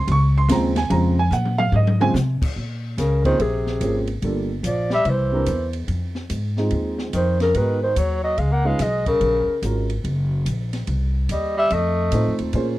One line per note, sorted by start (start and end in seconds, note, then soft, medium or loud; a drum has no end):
0.08 0.48 C#2 medium
0.08 kick soft
0.08 ride medium
0.12 0.36 C#6 loud
0.38 0.50 C6 loud
0.48 0.89 D#2 loud
0.48 0.73 C#3 medium
0.48 0.73 F3 medium
0.48 0.74 G#3 medium
0.48 0.74 C4 medium
0.48 0.76 A#5 medium
0.48 kick soft
0.48 snare medium
0.48 hi-hat pedal medium
0.48 ride medium
0.76 0.91 G#5 medium
0.76 snare medium
0.76 ride medium
0.90 1.30 F2 medium
0.90 1.14 C#3 medium
0.90 1.15 F3 medium
0.90 1.15 G#3 medium
0.90 1.15 C4 medium
0.90 1.17 A#5 loud
0.90 kick soft
0.90 ride medium
1.19 1.32 G#5 loud
1.31 1.71 A#2 medium
1.31 1.58 F#5 medium
1.31 hi-hat pedal medium
1.31 high tom medium
1.45 high tom medium
1.58 1.73 F5 loud
1.58 high tom medium
1.72 2.13 G#2 medium
1.72 2.00 D#5 medium
1.72 high tom medium
1.87 high tom medium
2.00 2.13 C#3 medium
2.00 2.14 F3 medium
2.00 2.14 G#3 medium
2.00 2.14 C4 medium
2.00 2.10 G#5 loud
2.00 high tom loud
2.14 2.39 C3 loud
2.14 snare medium
2.14 hi-hat pedal medium
2.42 muted upright bass stroke soft
2.42 kick medium
2.42 crash medium
2.56 2.97 A#2 medium
2.56 kick soft
2.98 3.38 C#2 medium
2.98 3.23 C#3 medium
2.98 3.24 A#4 medium
2.98 kick soft
2.98 snare soft
2.98 hi-hat pedal soft
2.98 ride medium
3.24 3.41 D#3 medium
3.24 3.38 F3 medium
3.24 3.38 A#3 medium
3.24 3.38 C4 medium
3.24 3.38 C#4 medium
3.24 3.38 G#4 medium
3.24 3.43 C5 medium
3.24 kick soft
3.24 ride soft
3.40 3.80 A#1 medium
3.40 4.08 C3 medium
3.40 4.09 G#4 medium
3.40 kick soft
3.40 ride medium
3.67 snare soft
3.80 4.21 G#1 medium
3.80 4.05 F3 medium
3.80 4.05 A#3 medium
3.80 4.06 C4 soft
3.80 4.06 C#4 soft
3.80 4.06 G#4 medium
3.80 kick soft
3.80 hi-hat pedal soft
3.80 ride medium
4.07 ride soft
4.22 4.63 G1 medium
4.22 4.47 G3 medium
4.22 4.48 A#3 medium
4.22 4.48 D4 medium
4.22 4.48 F4 soft
4.22 4.48 A4 medium
4.22 kick soft
4.22 ride medium
4.63 5.04 A#1 medium
4.63 4.90 F3 medium
4.63 4.91 D5 medium
4.63 kick soft
4.63 hi-hat pedal medium
4.63 ride medium
4.90 5.08 G3 medium
4.90 snare soft
4.95 5.11 E5 medium
5.05 5.46 C2 medium
5.05 5.75 E3 medium
5.05 kick soft
5.05 ride soft
5.10 5.76 C5 medium
5.32 5.46 G3 medium
5.32 5.46 C4 medium
5.32 5.46 D4 medium
5.32 5.47 E4 medium
5.32 5.47 A#4 medium
5.46 5.87 E2 medium
5.46 kick soft
5.46 hi-hat pedal medium
5.46 ride medium
5.73 ride soft
5.88 6.29 F2 medium
5.88 kick soft
5.88 ride soft
6.15 snare soft
6.30 6.71 G#2 medium
6.30 kick soft
6.30 hi-hat pedal medium
6.30 ride medium
6.57 7.11 G#3 medium
6.57 7.11 C4 medium
6.57 7.11 D#4 medium
6.57 7.12 F4 medium
6.57 7.12 G#4 medium
6.57 snare soft
6.70 7.12 D#2 medium
6.70 kick soft
6.70 ride soft
6.98 snare soft
7.13 7.54 F2 medium
7.13 7.39 D#3 medium
7.13 7.40 C5 medium
7.13 kick soft
7.13 hi-hat pedal medium
7.13 ride medium
7.40 7.56 C#3 medium
7.40 7.58 A#4 medium
7.40 snare soft
7.40 ride soft
7.54 7.96 G#2 medium
7.54 7.81 D#3 medium
7.54 7.79 G#3 medium
7.54 7.80 B3 medium
7.54 7.80 D#4 soft
7.54 7.80 F#4 medium
7.54 7.81 A#4 medium
7.54 7.83 B4 medium
7.54 kick soft
7.54 ride medium
7.82 7.97 D#3 medium
7.82 8.00 C5 medium
7.96 8.37 D#2 medium
7.96 8.23 F#3 medium
7.96 8.24 C#5 medium
7.96 kick soft
7.96 hi-hat pedal medium
7.96 ride medium
8.23 8.40 F#3 medium
8.23 8.40 D#5 medium
8.38 8.78 C#2 medium
8.38 8.53 G#3 medium
8.38 8.54 F5 medium
8.38 kick soft
8.38 ride soft
8.52 8.67 A#3 medium
8.52 8.68 F#5 medium
8.64 8.78 G#3 medium
8.64 8.81 G#3 medium
8.64 8.78 C#4 medium
8.64 8.78 D#4 medium
8.64 8.79 F4 soft
8.64 8.79 B4 medium
8.64 8.84 F5 medium
8.79 9.20 B1 medium
8.79 9.07 G#3 medium
8.79 9.07 D#5 medium
8.79 kick soft
8.79 snare soft
8.79 hi-hat pedal medium
8.79 ride medium
9.06 9.59 C#3 medium
9.06 9.60 A#4 medium
9.06 kick medium
9.06 ride soft
9.21 9.46 A#1 medium
9.21 kick soft
9.21 ride medium
9.47 muted upright bass stroke soft
9.62 10.03 G#1 medium
9.62 9.87 G#3 medium
9.62 9.88 C#4 soft
9.62 9.88 F4 soft
9.62 9.88 F#4 soft
9.62 9.88 A#4 medium
9.62 kick soft
9.62 hi-hat pedal medium
9.62 ride medium
9.90 ride soft
10.04 10.45 F#1 medium
10.04 kick soft
10.04 ride soft
10.45 10.86 A#1 medium
10.45 kick soft
10.45 hi-hat pedal medium
10.45 ride medium
10.73 snare soft
10.73 ride soft
10.87 11.28 C2 medium
10.87 kick soft
10.87 ride medium
11.29 11.69 D#2 medium
11.29 11.55 G3 medium
11.29 11.56 D#5 medium
11.29 kick soft
11.29 hi-hat pedal medium
11.29 ride medium
11.57 11.75 G3 medium
11.57 11.75 E5 loud
11.70 12.11 F2 medium
11.70 12.40 A3 medium
11.70 12.40 D#5 medium
11.70 kick soft
11.70 ride soft
12.12 12.28 A2 medium
12.12 12.53 A3 medium
12.12 12.54 C4 medium
12.12 12.54 D#4 medium
12.12 12.53 F4 medium
12.12 12.54 C5 medium
12.12 kick soft
12.12 hi-hat pedal medium
12.12 ride medium
12.27 12.38 F2 soft
12.39 12.52 D#2 medium
12.39 ride soft
12.53 12.79 A#2 medium
12.53 12.78 A#3 medium
12.53 12.78 C#4 medium
12.53 12.78 F4 medium
12.53 12.79 G#4 medium
12.53 12.79 C5 medium
12.53 kick soft
12.53 ride medium